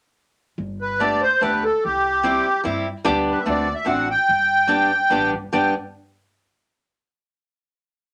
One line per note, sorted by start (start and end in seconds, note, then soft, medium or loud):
0.58 1.12 G1 medium
0.81 1.01 B4 medium
0.99 1.22 A3 soft
0.99 1.22 B3 soft
0.99 1.22 D4 soft
0.99 1.22 G4 medium
0.99 1.22 D5 medium
1.22 1.42 C5 medium
1.41 1.69 D2 medium
1.41 1.63 A3 soft
1.41 1.63 B3 soft
1.41 1.63 D4 soft
1.41 1.64 G4 medium
1.41 1.64 B4 medium
1.64 1.84 A4 medium
1.84 2.37 C2 medium
1.84 2.61 G4 medium
2.23 2.45 G3 soft
2.23 2.45 C4 medium
2.23 2.45 E4 soft
2.23 2.45 G4 medium
2.64 2.91 G2 medium
2.64 2.85 G3 medium
2.64 2.86 C4 soft
2.64 2.85 E4 soft
2.64 2.86 G4 medium
3.05 3.33 D2 medium
3.05 3.38 G3 medium
3.05 3.38 B3 medium
3.05 3.38 D4 medium
3.05 3.38 G4 medium
3.30 3.42 B4 medium
3.40 3.46 E5 soft
3.46 3.73 D2 medium
3.46 3.67 A3 soft
3.46 3.67 C4 soft
3.46 3.67 D4 soft
3.46 3.67 F#4 medium
3.50 3.75 D5 medium
3.75 3.88 E5 medium
3.85 4.13 A1 medium
3.85 4.07 A3 soft
3.85 4.07 C4 soft
3.85 4.07 D4 soft
3.85 4.07 F#4 soft
3.85 4.09 F#5 medium
4.11 5.31 G5 medium
4.29 4.83 G1 medium
4.67 4.90 G3 medium
4.67 4.90 B3 soft
4.67 4.90 D4 medium
4.67 4.90 G4 medium
5.10 5.32 A1 medium
5.10 5.32 G3 medium
5.10 5.33 B3 soft
5.10 5.33 D4 soft
5.10 5.33 G4 medium
5.33 5.51 G1 medium
5.53 5.73 G1 medium
5.53 5.73 G3 medium
5.53 5.73 B3 soft
5.53 5.73 D4 soft
5.53 5.73 G4 medium
5.53 5.74 G5 medium